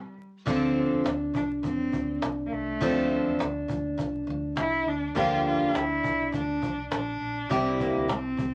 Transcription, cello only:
0.00 0.17 G3 medium
0.47 1.02 C4 medium
1.36 1.49 D4 medium
1.64 2.19 C4 medium
2.46 2.54 A#3 medium
2.53 3.40 A3 medium
4.59 4.90 E4 medium
4.88 5.17 D4 medium
5.17 5.44 F4 medium
5.46 5.77 F4 medium
5.76 6.34 E4 medium
6.34 6.88 D4 medium
6.94 7.53 D4 medium
7.52 7.83 C4 medium
7.81 8.10 A#3 medium
8.10 8.54 C4 medium

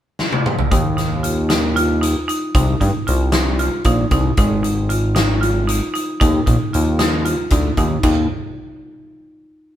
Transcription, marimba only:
0.71 0.89 D#4 medium
0.97 1.15 D#4 medium
1.23 1.41 F4 medium
1.49 1.67 D#4 medium
1.76 1.93 F4 medium
2.01 2.19 D#4 medium
2.28 2.46 D#4 medium
2.55 2.72 D#4 medium
2.80 2.98 D#4 medium
3.07 3.24 F4 medium
3.32 3.50 D#4 medium
3.59 3.77 F4 medium
3.86 4.03 D#4 medium
4.12 4.29 D#4 medium
4.38 4.55 D#4 medium
4.63 4.81 D#4 medium
4.89 5.07 F4 medium
5.15 5.32 D#4 medium
5.41 5.59 F4 medium
5.67 5.85 D#4 medium
5.94 6.11 D#4 medium
6.20 6.37 D#4 medium
6.46 6.64 D#4 medium
6.73 6.90 F4 medium
6.99 7.16 D#4 medium
7.25 7.42 F4 medium
7.52 7.69 D#4 medium
7.78 7.95 D#4 medium
8.04 8.28 D#4 medium

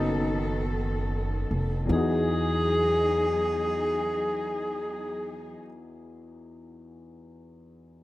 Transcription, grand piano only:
0.00 1.89 F#3 soft
0.00 1.91 B3 soft
0.00 1.91 C#4 soft
0.00 1.90 D#4 soft
0.00 1.92 F#4 soft
0.00 1.94 A4 medium
1.86 5.55 E2 soft
1.86 5.58 E3 soft
1.91 5.60 D#4 soft
1.91 5.64 F#4 soft
1.98 5.67 G#4 medium

